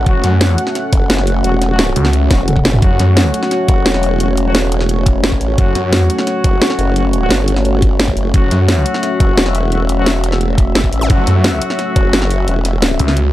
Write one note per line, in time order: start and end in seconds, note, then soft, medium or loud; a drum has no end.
0.00 13.33 A3 medium
0.00 13.33 C#4 medium
0.00 13.33 F#4 medium
0.00 2.80 F#5 medium
0.06 0.22 F#1 medium
0.06 0.30 F#3 medium
0.06 0.30 C#4 medium
0.06 0.30 F#4 medium
0.06 kick loud
0.06 closed hi-hat medium
0.24 0.57 F#2 loud
0.24 snare soft
0.24 closed hi-hat loud
0.41 snare loud
0.41 closed hi-hat medium
0.58 closed hi-hat loud
0.67 snare soft
0.75 snare soft
0.75 closed hi-hat medium
0.93 1.08 F#1 loud
0.93 kick loud
0.93 closed hi-hat loud
1.10 1.43 F#1 loud
1.10 snare loud
1.10 closed hi-hat medium
1.18 snare medium
1.27 open hi-hat medium
1.44 1.95 E1 loud
1.44 1.51 F#3 medium
1.44 1.51 C#4 medium
1.44 1.51 F#4 medium
1.44 closed hi-hat medium
1.62 snare soft
1.62 closed hi-hat loud
1.70 1.81 F#3 medium
1.70 1.81 C#4 medium
1.70 1.81 F#4 loud
1.79 snare loud
1.79 closed hi-hat medium
1.96 2.29 C#2 loud
1.96 closed hi-hat loud
2.05 snare soft
2.13 closed hi-hat medium
2.31 2.64 E1 loud
2.31 2.41 F#3 medium
2.31 2.41 C#4 medium
2.31 2.41 F#4 medium
2.31 kick loud
2.31 snare medium
2.31 closed hi-hat loud
2.48 closed hi-hat medium
2.48 mid tom medium
2.56 kick medium
2.56 mid tom medium
2.65 2.81 F#1 loud
2.65 snare loud
2.65 open hi-hat medium
2.74 mid tom medium
2.82 2.98 F#1 medium
2.82 3.06 F#3 medium
2.82 3.06 C#4 medium
2.82 3.06 F#4 medium
2.82 8.32 C#5 medium
2.82 kick loud
2.82 closed hi-hat medium
2.99 3.33 F#2 loud
2.99 snare soft
2.99 closed hi-hat loud
3.08 4.18 F#3 medium
3.08 4.18 C#4 medium
3.08 4.18 F#4 medium
3.17 snare loud
3.17 closed hi-hat medium
3.34 closed hi-hat loud
3.43 snare medium
3.51 snare soft
3.51 closed hi-hat medium
3.68 3.84 F#1 loud
3.68 kick loud
3.68 closed hi-hat loud
3.86 5.22 E1 loud
3.86 snare loud
3.86 closed hi-hat medium
3.94 snare medium
4.03 open hi-hat medium
4.20 4.27 F#3 medium
4.20 4.27 C#4 medium
4.20 4.27 F#4 medium
4.20 closed hi-hat medium
4.37 closed hi-hat loud
4.46 4.57 F#3 loud
4.46 4.57 C#4 medium
4.46 4.57 F#4 loud
4.55 snare loud
4.55 closed hi-hat medium
4.72 closed hi-hat loud
4.81 snare soft
4.89 closed hi-hat medium
5.06 kick loud
5.06 closed hi-hat loud
5.24 5.40 F#1 loud
5.24 snare loud
5.24 closed hi-hat medium
5.32 kick medium
5.41 5.57 A1 medium
5.41 open hi-hat medium
5.58 5.74 F#1 loud
5.58 5.82 F#3 medium
5.58 5.82 C#4 medium
5.58 5.82 F#4 medium
5.58 kick loud
5.58 closed hi-hat medium
5.75 6.08 F#2 loud
5.75 snare soft
5.75 closed hi-hat medium
5.84 6.94 F#3 medium
5.84 6.94 C#4 medium
5.84 6.94 F#4 medium
5.93 snare loud
5.93 closed hi-hat medium
6.10 closed hi-hat medium
6.18 snare medium
6.27 snare soft
6.27 closed hi-hat medium
6.44 6.60 F#1 medium
6.44 kick loud
6.44 closed hi-hat medium
6.62 snare loud
6.62 closed hi-hat medium
6.70 snare medium
6.79 7.29 F#1 loud
6.79 open hi-hat medium
6.96 7.03 F#3 medium
6.96 7.03 C#4 medium
6.96 7.03 F#4 medium
6.96 closed hi-hat medium
7.13 closed hi-hat medium
7.22 7.32 F#3 medium
7.22 7.32 C#4 medium
7.22 7.32 F#4 loud
7.30 8.15 G1 loud
7.30 snare loud
7.30 closed hi-hat medium
7.48 closed hi-hat medium
7.56 snare soft
7.65 closed hi-hat medium
7.82 kick loud
7.82 closed hi-hat medium
8.00 snare loud
8.00 closed hi-hat medium
8.08 kick medium
8.17 8.33 F#1 loud
8.17 open hi-hat medium
8.34 8.50 F#1 medium
8.34 8.58 F#3 medium
8.34 8.58 C#4 medium
8.34 8.58 F#4 medium
8.34 13.33 E5 medium
8.34 kick loud
8.34 closed hi-hat medium
8.51 8.84 F#2 loud
8.51 snare soft
8.51 closed hi-hat medium
8.60 9.70 F#3 medium
8.60 9.70 C#4 medium
8.60 9.70 F#4 medium
8.68 snare loud
8.68 closed hi-hat medium
8.86 closed hi-hat medium
8.94 snare soft
9.03 snare soft
9.03 closed hi-hat medium
9.20 9.36 F#1 loud
9.20 kick loud
9.20 closed hi-hat medium
9.37 10.74 E1 loud
9.37 snare loud
9.37 closed hi-hat medium
9.46 snare medium
9.55 open hi-hat medium
9.72 9.79 F#3 medium
9.72 9.79 C#4 medium
9.72 9.79 F#4 medium
9.72 closed hi-hat medium
9.89 closed hi-hat medium
9.98 10.08 F#3 medium
9.98 10.08 C#4 medium
9.98 10.08 F#4 loud
10.06 snare loud
10.06 closed hi-hat medium
10.24 closed hi-hat medium
10.32 snare soft
10.41 closed hi-hat medium
10.58 kick loud
10.58 closed hi-hat medium
10.75 10.91 F#1 loud
10.75 snare loud
10.75 closed hi-hat medium
10.84 kick medium
10.93 11.08 A1 loud
10.93 open hi-hat medium
11.01 zap medium
11.10 11.26 F#1 medium
11.10 11.34 F#3 medium
11.10 11.34 C#4 medium
11.10 11.34 F#4 medium
11.10 kick loud
11.10 closed hi-hat medium
11.27 11.60 F#2 loud
11.27 snare soft
11.27 closed hi-hat medium
11.36 12.46 F#3 medium
11.36 12.46 C#4 medium
11.36 12.46 F#4 medium
11.44 snare loud
11.44 closed hi-hat medium
11.62 closed hi-hat loud
11.70 snare soft
11.79 snare soft
11.79 closed hi-hat medium
11.96 12.12 F#1 loud
11.96 kick loud
11.96 closed hi-hat loud
12.13 12.46 F#1 loud
12.13 snare loud
12.13 closed hi-hat medium
12.22 snare medium
12.31 open hi-hat medium
12.48 12.98 E1 loud
12.48 12.54 F#3 medium
12.48 12.54 C#4 medium
12.48 12.54 F#4 medium
12.48 closed hi-hat medium
12.65 snare soft
12.65 closed hi-hat loud
12.82 snare loud
12.82 closed hi-hat medium
12.99 13.33 C#2 loud
12.99 closed hi-hat loud
13.08 snare soft
13.17 closed hi-hat medium